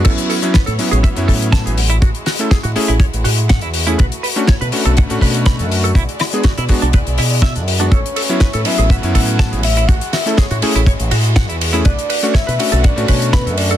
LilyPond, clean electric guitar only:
\new Staff \with { instrumentName = "Clean electric guitar" } { \time 4/4 \key a \major \tempo 4 = 122 a'16 r16 a'16 r16 b'16 a'16 r16 gis'16 e''16 r16 a'16 r16 a''16 gis'16 r16 e'16 | fis'16 r16 fis'16 r16 gis'16 fis'16 r16 e'16 cis''16 r16 fis'16 r16 fis''16 e'16 r16 e'16 | b'16 r16 b'16 r16 cis''16 b'16 r16 a'16 fis''16 r16 b'16 r16 b''16 a'16 r16 a'16 | e'16 r16 e'16 r16 fis'16 e'16 r16 d'16 b'16 r16 e'16 r16 e''16 d'16 r16 d'16 |
a'16 r16 a'16 r16 b'16 a'16 r16 gis'16 e''16 r16 a'16 r16 a''16 gis'16 r16 e'16 | fis'16 r16 fis'16 r16 gis'16 fis'16 r16 e'16 cis''16 r16 fis'16 r16 fis''16 e'16 r16 e'16 | b'16 r16 b'16 r16 cis''16 b'16 r16 a'16 fis''16 r16 b'16 r16 b''16 a'16 r16 a'16 | }